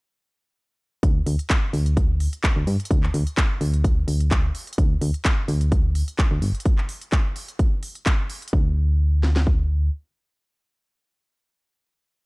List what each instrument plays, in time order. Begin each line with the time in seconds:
1.03 fm bass D2, kick, closed hi-hat
1.26 fm bass D2, open hi-hat
1.39 closed hi-hat
1.50 kick, clap, closed hi-hat
1.73 fm bass D2, open hi-hat
1.86 closed hi-hat
1.97 kick, closed hi-hat
2.20 open hi-hat
2.33 closed hi-hat
2.44 kick, clap, closed hi-hat
2.56 fm bass D2
2.67 fm bass G2, open hi-hat
2.80 closed hi-hat
2.85 closed hi-hat
2.91 fm bass D2, kick, closed hi-hat
3.03 clap
3.14 fm bass D2, open hi-hat
3.27 closed hi-hat
3.37 kick, clap, closed hi-hat
3.61 fm bass D2, open hi-hat
3.74 closed hi-hat
3.84 kick, closed hi-hat
4.08 fm bass D2, open hi-hat
4.20 closed hi-hat
4.31 kick, clap, closed hi-hat
4.55 open hi-hat
4.67 closed hi-hat
4.73 closed hi-hat
4.78 fm bass D2, kick, closed hi-hat
5.01 fm bass D2, open hi-hat
5.14 closed hi-hat
5.25 kick, clap, closed hi-hat
5.48 fm bass D2, open hi-hat
5.61 closed hi-hat
5.72 kick, closed hi-hat
5.95 open hi-hat
6.08 closed hi-hat
6.19 kick, clap, closed hi-hat
6.31 fm bass D2
6.42 fm bass G1, open hi-hat
6.55 closed hi-hat
6.60 closed hi-hat
6.66 kick, closed hi-hat
6.78 clap
6.89 open hi-hat
7.02 closed hi-hat
7.12 kick, clap, closed hi-hat
7.36 open hi-hat
7.48 closed hi-hat
7.59 kick, closed hi-hat
7.83 open hi-hat
7.95 closed hi-hat
8.06 kick, clap, closed hi-hat
8.30 open hi-hat
8.42 closed hi-hat
8.48 closed hi-hat
8.53 fm bass D2, kick
9.23 snare
9.36 snare
9.47 kick